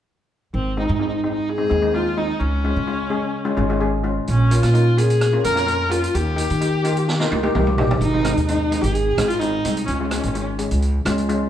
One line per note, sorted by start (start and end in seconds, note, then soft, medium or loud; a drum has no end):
0.54 0.84 G#1 medium
0.54 0.76 C4 medium
0.77 0.91 G#3 medium
0.77 0.91 C4 medium
0.77 0.91 D#4 medium
0.77 0.85 D#4 medium
0.86 1.60 G#2 medium
0.86 0.92 D#4 medium
0.94 1.00 D#4 medium
0.99 1.14 G#3 medium
0.99 1.14 C4 medium
0.99 1.07 D#4 medium
0.99 1.14 F4 medium
1.08 1.15 D#4 medium
1.16 1.22 D#4 medium
1.24 1.45 G#3 medium
1.24 1.45 C4 medium
1.24 1.45 D#4 medium
1.24 1.30 D#4 medium
1.32 1.51 D#4 medium
1.49 1.96 G#4 medium
1.58 1.65 G#3 medium
1.58 1.65 C4 medium
1.58 1.65 D#4 medium
1.70 2.31 D#2 medium
1.70 1.77 G#3 medium
1.70 1.77 C4 medium
1.70 1.77 D#4 medium
1.82 1.89 G#3 medium
1.82 1.89 C4 medium
1.82 1.89 D#4 medium
1.94 2.08 G#3 medium
1.94 2.08 C4 medium
1.94 2.08 D#4 medium
1.94 2.19 F4 medium
2.17 2.40 G#3 medium
2.17 2.41 C4 medium
2.17 2.41 D#4 medium
2.39 2.71 C#2 medium
2.39 3.80 C#4 medium
2.64 2.78 G#3 medium
2.64 2.79 C#4 medium
2.64 2.79 F4 medium
2.76 3.47 C#3 medium
2.87 3.02 G#3 medium
2.87 3.02 C#4 medium
2.87 3.02 F4 medium
3.10 3.31 G#3 medium
3.10 3.32 C#4 medium
3.10 3.32 G#4 medium
3.45 3.52 G#3 medium
3.45 3.52 C#4 medium
3.45 3.52 F4 medium
3.57 4.18 G#1 medium
3.57 3.64 G#3 medium
3.57 3.64 C#4 medium
3.57 3.64 F4 medium
3.70 3.76 G#3 medium
3.70 3.76 C#4 medium
3.70 3.76 F4 medium
3.80 3.95 G#3 medium
3.80 3.95 C#4 medium
3.80 3.95 G#4 medium
4.04 4.27 G#3 medium
4.04 4.27 C#4 medium
4.04 4.27 F4 medium
4.27 4.59 A#1 medium
4.27 4.54 C#4 medium
4.27 closed hi-hat soft
4.51 4.65 A#3 medium
4.51 4.66 C#4 medium
4.51 4.66 F4 medium
4.51 4.99 F4 medium
4.51 closed hi-hat medium
4.63 5.33 A#2 medium
4.63 cross-stick medium
4.63 closed hi-hat medium
4.74 4.88 A#3 medium
4.74 4.89 C#4 medium
4.74 4.88 D#4 medium
4.74 closed hi-hat soft
4.98 5.19 A#3 medium
4.98 5.19 C#4 medium
4.98 5.19 F4 medium
4.98 5.44 G#4 loud
4.98 closed hi-hat medium
5.10 closed hi-hat medium
5.21 cross-stick medium
5.21 closed hi-hat medium
5.33 5.40 A#3 medium
5.33 5.40 C#4 medium
5.33 5.40 F4 medium
5.44 6.05 F2 medium
5.44 5.52 A#3 medium
5.44 5.52 C#4 medium
5.44 5.51 F4 medium
5.44 5.93 A#4 medium
5.44 closed hi-hat medium
5.55 5.63 A#3 medium
5.55 5.63 C#4 medium
5.55 5.63 F4 medium
5.55 cross-stick medium
5.55 closed hi-hat soft
5.67 5.82 A#3 medium
5.67 5.82 C#4 medium
5.67 5.82 F4 medium
5.67 closed hi-hat medium
5.89 6.14 A#3 medium
5.89 6.14 C#4 medium
5.89 6.14 F4 medium
5.89 6.16 F4 medium
5.89 closed hi-hat medium
6.04 closed hi-hat medium
6.15 6.45 D#2 medium
6.15 7.55 G4 medium
6.15 closed hi-hat medium
6.36 6.52 A#3 medium
6.36 6.51 D#4 medium
6.36 6.52 G4 medium
6.36 closed hi-hat medium
6.50 7.21 D#3 medium
6.50 closed hi-hat soft
6.61 6.75 A#3 medium
6.61 6.76 D#4 medium
6.61 6.76 G4 medium
6.61 closed hi-hat medium
6.84 7.06 A#3 medium
6.84 7.06 D#4 medium
6.84 7.06 F4 medium
6.84 closed hi-hat medium
6.97 closed hi-hat medium
7.08 snare soft
7.20 7.27 A#3 medium
7.20 7.27 D#4 medium
7.20 7.27 F4 medium
7.20 snare soft
7.31 7.53 C#2 medium
7.31 7.38 A#3 medium
7.31 7.39 D#4 medium
7.31 7.38 F4 medium
7.31 high tom medium
7.43 7.50 A#3 medium
7.43 7.50 D#4 medium
7.43 7.50 G4 medium
7.43 high tom medium
7.55 7.76 C2 medium
7.55 7.69 A#3 medium
7.55 7.69 D#4 medium
7.55 7.69 G4 medium
7.55 mid tom medium
7.67 mid tom medium
7.78 7.99 A#1 medium
7.78 8.01 A#3 medium
7.78 8.02 D#4 medium
7.78 8.02 G4 medium
7.78 floor tom medium
7.91 floor tom medium
8.01 8.32 G#1 medium
8.01 8.45 D#4 medium
8.01 closed hi-hat soft
8.14 8.20 G#3 medium
8.14 8.21 C4 medium
8.14 8.21 D#4 medium
8.25 8.39 G#3 medium
8.25 8.39 C4 medium
8.25 8.39 D#4 medium
8.25 cross-stick medium
8.25 closed hi-hat medium
8.37 8.77 D#2 medium
8.37 closed hi-hat soft
8.47 8.63 G#3 medium
8.47 8.63 C4 medium
8.47 8.83 D#4 medium
8.47 8.63 D#4 medium
8.47 closed hi-hat medium
8.71 9.00 G#3 medium
8.71 9.00 C4 medium
8.71 9.00 D#4 medium
8.71 closed hi-hat medium
8.81 9.13 G#1 medium
8.81 8.93 G4 medium
8.81 closed hi-hat medium
8.92 9.29 G#4 medium
8.92 closed hi-hat medium
9.18 9.58 G#1 medium
9.18 9.33 G#3 medium
9.18 9.33 C4 medium
9.18 9.33 D#4 medium
9.18 cross-stick medium
9.18 closed hi-hat medium
9.28 9.41 F4 medium
9.28 closed hi-hat soft
9.39 9.56 G#3 medium
9.39 9.56 C4 medium
9.39 9.85 D#4 medium
9.39 9.57 D#4 medium
9.39 closed hi-hat medium
9.65 9.85 C2 medium
9.65 9.86 G#3 medium
9.65 9.86 C4 medium
9.65 9.86 D#4 medium
9.65 closed hi-hat medium
9.77 closed hi-hat medium
9.86 10.19 C#2 medium
9.86 9.94 C#4 medium
9.86 closed hi-hat medium
9.95 10.01 C#4 soft
10.00 10.07 G#3 medium
10.00 10.07 C#4 soft
10.00 10.09 C#4 medium
10.00 10.07 F4 medium
10.09 10.26 G#3 medium
10.09 10.17 C#4 soft
10.09 10.26 C#4 medium
10.09 10.26 F4 medium
10.09 cross-stick medium
10.09 closed hi-hat medium
10.18 10.24 C#4 medium
10.23 10.65 G#1 medium
10.23 10.31 C#4 soft
10.23 closed hi-hat medium
10.32 10.50 G#3 medium
10.32 10.38 C#4 medium
10.32 10.50 C#4 medium
10.32 10.50 F4 medium
10.32 closed hi-hat medium
10.39 10.47 C#4 soft
10.59 10.87 G#3 medium
10.59 10.87 C#4 medium
10.59 10.87 G#4 medium
10.59 closed hi-hat medium
10.71 11.01 C#2 medium
10.71 closed hi-hat medium
10.82 closed hi-hat soft
11.05 11.46 C#2 medium
11.05 11.20 G#3 medium
11.05 11.20 C#4 medium
11.05 11.20 F4 medium
11.05 cross-stick medium
11.05 closed hi-hat medium
11.18 closed hi-hat soft
11.29 11.43 G#3 medium
11.29 11.43 C#4 medium
11.29 11.43 F4 medium
11.29 closed hi-hat soft